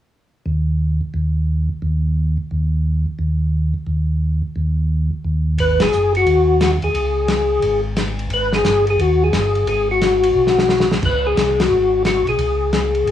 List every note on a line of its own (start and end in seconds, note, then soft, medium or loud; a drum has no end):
0.46 1.01 D#2 medium
1.14 1.69 D#2 medium
1.82 2.37 D#2 medium
2.51 3.06 D#2 medium
3.19 3.74 D#2 medium
3.87 4.42 D#2 medium
4.56 5.11 D#2 medium
5.24 5.79 D#2 medium
5.58 5.90 G#1 medium
5.58 5.82 B4 medium
5.58 ride medium
5.80 6.13 G#4 medium
5.80 snare medium
5.80 ride medium
5.92 6.24 F#1 medium
5.92 hi-hat pedal medium
6.15 6.60 F#4 medium
6.15 ride soft
6.26 6.79 D#2 medium
6.26 ride soft
6.61 6.71 F#4 medium
6.61 snare medium
6.61 hi-hat pedal medium
6.61 ride medium
6.82 6.89 D#2 soft
6.82 7.81 G#4 medium
6.82 ride soft
6.94 7.59 C#2 medium
6.94 ride medium
7.28 snare medium
7.28 hi-hat pedal medium
7.28 ride medium
7.62 8.27 G#1 medium
7.62 ride medium
7.97 snare medium
7.97 hi-hat pedal soft
7.97 ride medium
8.19 ride soft
8.30 8.62 G#1 medium
8.30 8.53 B4 medium
8.30 ride medium
8.53 8.86 G#4 loud
8.53 snare soft
8.64 8.96 G1 medium
8.64 snare medium
8.64 hi-hat pedal medium
8.64 ride medium
8.87 9.01 G#4 medium
8.87 ride soft
8.98 9.30 D#2 medium
8.98 9.23 F#4 medium
8.98 ride medium
9.24 9.68 G#4 medium
9.33 9.65 G1 medium
9.33 snare medium
9.33 hi-hat pedal medium
9.33 ride medium
9.55 ride soft
9.66 10.31 G#1 medium
9.66 9.88 G#4 medium
9.66 ride medium
9.91 10.88 F#4 medium
10.01 snare medium
10.01 hi-hat pedal medium
10.01 ride medium
10.23 ride medium
10.35 11.00 B1 medium
10.47 snare soft
10.59 snare medium
10.69 snare medium
10.69 hi-hat pedal soft
10.80 snare medium
10.91 snare medium
11.03 11.35 C#2 medium
11.03 11.27 B4 medium
11.03 kick medium
11.03 crash medium
11.27 11.61 G#4 medium
11.36 11.68 C2 medium
11.36 snare medium
11.36 hi-hat pedal soft
11.36 ride medium
11.60 12.03 F#4 medium
11.60 snare medium
11.60 ride medium
11.70 12.23 G#1 medium
12.05 12.26 F#4 medium
12.05 snare medium
12.05 hi-hat pedal soft
12.05 ride medium
12.26 12.38 B1 medium
12.26 13.11 G#4 medium
12.26 ride soft
12.39 13.04 C#2 medium
12.39 ride medium
12.73 snare medium
12.73 hi-hat pedal medium
12.73 ride medium
12.95 ride soft
13.06 13.11 G#1 medium
13.06 ride medium